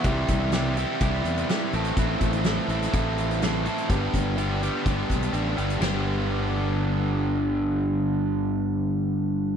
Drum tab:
CC |----------------|----------------|----------------|x---------------|
HH |x-x-x-x-x-xxx-xx|x-xxx-xxx-xxx-xx|x-x-x-x-x-xxx-xx|----------------|
SD |----o-------o---|----o--o----o---|----------------|o---------------|
BD |o-o-----o-------|o-o-----o-------|o-o-----o-o-----|----------------|

CC |----------------|
HH |----------------|
SD |----------------|
BD |----------------|